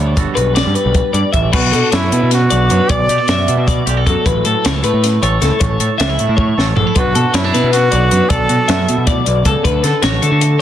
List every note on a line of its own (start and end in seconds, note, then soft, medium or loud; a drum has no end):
0.00 0.14 D2 medium
0.00 0.15 G2 medium
0.00 0.17 D3 medium
0.00 0.74 G3 medium
0.00 0.17 B3 medium
0.00 0.17 F#4 soft
0.00 0.17 A4 medium
0.00 0.35 C#5 medium
0.16 0.25 G1 medium
0.16 1.14 G2 medium
0.16 1.73 B3 medium
0.16 0.36 F#4 medium
0.16 1.52 A4 medium
0.16 kick medium
0.16 closed hi-hat medium
0.35 0.61 B1 medium
0.35 1.52 F#4 soft
0.35 0.55 B4 medium
0.35 closed hi-hat soft
0.55 0.75 D5 medium
0.55 snare medium
0.55 closed hi-hat medium
0.67 0.74 G2 medium
0.75 1.53 G3 medium
0.75 1.13 B4 medium
0.75 closed hi-hat soft
0.85 1.02 B1 medium
0.94 kick medium
0.94 closed hi-hat medium
1.13 1.22 G2 medium
1.13 1.34 G2 medium
1.13 1.32 D5 medium
1.13 closed hi-hat medium
1.33 1.50 A1 medium
1.33 1.53 A2 medium
1.33 1.52 E5 medium
1.33 kick medium
1.33 closed hi-hat soft
1.53 1.70 B1 medium
1.53 2.88 B2 medium
1.53 1.90 F#4 medium
1.53 1.73 B4 medium
1.53 kick loud
1.53 crash loud
1.72 1.82 B2 medium
1.72 1.91 D4 medium
1.72 1.92 A4 medium
1.72 closed hi-hat medium
1.92 2.09 F#2 medium
1.92 2.50 D4 medium
1.92 2.29 E4 medium
1.92 2.12 C#5 medium
1.92 snare loud
1.92 closed hi-hat medium
2.11 2.20 B2 medium
2.11 2.87 B3 medium
2.11 2.50 B4 medium
2.11 closed hi-hat medium
2.23 2.47 B2 medium
2.31 2.92 F#4 medium
2.31 snare soft
2.31 closed hi-hat medium
2.50 2.68 B1 medium
2.50 2.70 D4 medium
2.50 2.70 D5 medium
2.50 closed hi-hat medium
2.70 2.79 F#2 medium
2.70 3.12 F#3 medium
2.70 2.88 D4 medium
2.70 2.90 B4 medium
2.70 closed hi-hat medium
2.89 3.06 B1 loud
2.89 4.23 B2 medium
2.89 3.68 D5 loud
2.89 3.29 D5 medium
2.89 kick loud
2.89 closed hi-hat medium
3.09 3.18 B2 medium
3.09 3.18 G4 medium
3.09 closed hi-hat medium
3.18 3.86 A4 medium
3.28 3.45 F#2 medium
3.28 4.07 F#4 medium
3.28 3.67 E5 medium
3.28 snare loud
3.28 closed hi-hat medium
3.48 3.56 B2 medium
3.48 4.23 B3 medium
3.48 closed hi-hat medium
3.57 3.82 B2 medium
3.68 4.06 D5 medium
3.68 kick loud
3.68 closed hi-hat medium
3.86 4.03 B1 medium
3.86 3.97 G4 medium
3.86 closed hi-hat medium
3.97 4.26 A4 soft
4.07 4.15 F#2 medium
4.07 4.69 F#3 medium
4.07 4.66 F#4 medium
4.07 4.26 A4 medium
4.07 kick medium
4.07 closed hi-hat medium
4.26 4.42 A1 medium
4.26 5.41 A2 medium
4.26 4.45 B4 medium
4.26 kick loud
4.26 closed hi-hat medium
4.45 4.53 A2 medium
4.45 4.65 A4 medium
4.45 5.23 A4 medium
4.45 closed hi-hat medium
4.65 4.81 C#2 loud
4.65 5.41 E4 medium
4.65 4.84 C#5 medium
4.65 snare loud
4.65 closed hi-hat loud
4.84 4.92 A2 medium
4.84 6.19 A3 medium
4.84 5.22 B4 medium
4.84 closed hi-hat medium
4.94 5.18 A2 medium
5.04 snare soft
5.04 closed hi-hat loud
5.23 5.39 A1 medium
5.23 5.80 A4 medium
5.23 5.42 C#5 medium
5.23 closed hi-hat medium
5.41 5.50 C#2 medium
5.41 5.59 A2 medium
5.41 5.59 E4 medium
5.41 5.61 A4 medium
5.41 snare soft
5.41 closed hi-hat medium
5.60 5.77 A1 loud
5.60 6.75 A2 medium
5.60 5.98 C#5 medium
5.60 kick loud
5.60 closed hi-hat loud
5.80 5.88 A2 medium
5.80 6.57 A4 medium
5.80 closed hi-hat medium
5.98 6.16 C#2 medium
5.98 6.09 D4 medium
5.98 6.36 E5 medium
5.98 snare loud
5.98 closed hi-hat medium
6.09 6.76 E4 soft
6.19 6.28 A2 medium
6.19 6.96 A3 medium
6.19 closed hi-hat medium
6.29 6.53 A2 medium
6.37 6.76 C#5 medium
6.37 kick loud
6.58 6.74 A1 medium
6.58 6.99 A4 medium
6.58 snare medium
6.76 6.85 A#1 medium
6.76 6.94 A2 medium
6.76 6.87 D4 medium
6.76 6.95 A4 medium
6.76 floor tom medium
6.87 6.96 E4 soft
6.95 7.12 B1 medium
6.95 8.28 B2 medium
6.95 7.35 B3 medium
6.95 7.16 D4 medium
6.95 7.36 F#4 medium
6.95 7.15 B4 medium
6.95 kick loud
6.95 closed hi-hat medium
7.15 7.23 B2 medium
7.15 7.34 D4 medium
7.15 7.34 A4 medium
7.15 closed hi-hat medium
7.34 7.50 F#2 medium
7.34 7.44 B3 medium
7.34 7.73 E4 medium
7.34 7.53 C#5 medium
7.34 snare loud
7.34 closed hi-hat medium
7.44 7.91 D4 soft
7.54 7.62 B2 medium
7.54 8.28 B3 medium
7.54 7.91 B4 medium
7.54 snare soft
7.54 closed hi-hat medium
7.64 7.88 B2 medium
7.73 8.31 F#4 medium
7.73 snare soft
7.73 closed hi-hat medium
7.91 8.09 B1 loud
7.91 8.11 D4 medium
7.91 8.11 D5 medium
7.91 closed hi-hat medium
8.11 8.20 F#2 medium
8.11 9.63 F#3 medium
8.11 9.48 D4 medium
8.11 8.30 B4 medium
8.11 closed hi-hat medium
8.30 8.46 B1 loud
8.30 9.06 B2 medium
8.30 9.07 A4 loud
8.30 8.68 D5 medium
8.30 kick loud
8.30 closed hi-hat loud
8.49 8.58 B2 medium
8.49 8.69 F#4 medium
8.49 closed hi-hat medium
8.68 8.85 F#2 loud
8.68 10.02 F#4 medium
8.68 9.07 E5 medium
8.68 snare loud
8.68 closed hi-hat loud
8.88 8.97 B2 medium
8.88 9.63 B3 medium
8.88 closed hi-hat medium
8.98 9.22 B2 medium
9.06 9.26 A2 medium
9.06 9.45 D5 medium
9.06 kick loud
9.06 closed hi-hat loud
9.26 9.43 B1 medium
9.26 9.45 B2 medium
9.26 closed hi-hat medium
9.45 9.54 C#2 medium
9.45 9.65 C#3 medium
9.45 9.64 A4 medium
9.45 kick medium
9.45 closed hi-hat medium
9.63 9.81 D2 loud
9.63 10.62 D3 medium
9.63 9.84 B4 medium
9.63 kick loud
9.63 closed hi-hat medium
9.83 9.92 D3 loud
9.83 10.59 A4 medium
9.83 10.02 A4 medium
9.83 snare soft
9.83 closed hi-hat medium
10.02 10.19 A1 medium
10.02 10.62 F#4 medium
10.02 10.22 C#5 medium
10.02 snare loud
10.02 closed hi-hat medium
10.21 10.30 D3 medium
10.21 10.62 A3 medium
10.21 10.61 A4 medium
10.21 closed hi-hat medium
10.32 10.56 D3 medium
10.41 closed hi-hat loud